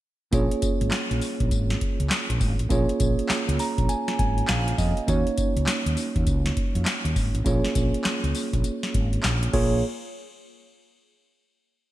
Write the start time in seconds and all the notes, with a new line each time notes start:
0.32 A#1 A#3 C#4 F4 G#4 C#5, kick, closed hi-hat, tambourine
0.51 closed hi-hat
0.62 kick, closed hi-hat, tambourine
0.81 G#1, closed hi-hat
0.91 snare, clap, closed hi-hat, tambourine
1.11 A#1, closed hi-hat
1.21 open hi-hat, tambourine
1.40 A#1, kick, closed hi-hat
1.51 G#1, kick, closed hi-hat, tambourine
1.70 snare, closed hi-hat
1.81 kick, closed hi-hat
2.00 C#2, closed hi-hat
2.10 snare, clap, closed hi-hat, tambourine
2.30 A#1, closed hi-hat
2.41 G#1, kick, open hi-hat, tambourine
2.59 A1, closed hi-hat
2.69 A#1 A#3 C#4 F4 G#4 C#5, kick, closed hi-hat, tambourine
2.89 closed hi-hat
3.00 A#1, kick, closed hi-hat, tambourine
3.19 closed hi-hat
3.29 muted fretless electric bass stroke, snare, clap, closed hi-hat, tambourine
3.48 C#2, closed hi-hat
3.59 A#5, open hi-hat, tambourine
3.78 A#1, kick, closed hi-hat
3.89 G#5, closed hi-hat, tambourine
4.08 snare, closed hi-hat
4.19 G#1 G#5, kick, closed hi-hat
4.38 closed hi-hat
4.48 A#1 F5, snare, clap, closed hi-hat, tambourine
4.68 closed hi-hat
4.78 F2 D#5, kick, open hi-hat, tambourine
4.97 closed hi-hat
5.07 D#2 A#3 C#4 D#4 F#4 C#5, kick, closed hi-hat, tambourine
5.27 closed hi-hat
5.38 kick, closed hi-hat, tambourine
5.56 C#2, closed hi-hat
5.67 snare, clap, closed hi-hat, tambourine
5.86 D#2, closed hi-hat
5.97 open hi-hat, tambourine
6.16 D#2, kick, closed hi-hat
6.27 C#2, kick, closed hi-hat, tambourine
6.46 snare, closed hi-hat
6.57 kick, closed hi-hat
6.75 F2, closed hi-hat
6.86 snare, clap, closed hi-hat, tambourine
7.05 D#2, closed hi-hat
7.16 G#1, kick, open hi-hat, tambourine
7.35 A1, closed hi-hat
7.44 A#1 A#3 C#4 F4 G#4 C#5, kick, closed hi-hat, tambourine
7.65 snare, closed hi-hat
7.75 A#1, kick, closed hi-hat, tambourine
7.94 closed hi-hat
8.04 muted fretless electric bass stroke, snare, clap, closed hi-hat, tambourine
8.24 C#2, closed hi-hat
8.35 open hi-hat, tambourine
8.53 A#1, kick, closed hi-hat
8.64 closed hi-hat, tambourine
8.83 snare, closed hi-hat
8.94 G#1, kick, closed hi-hat
9.13 closed hi-hat
9.23 A#1, snare, clap, closed hi-hat, tambourine
9.43 closed hi-hat
9.53 A#1 A#3 F4 G#4 C#5, kick, crash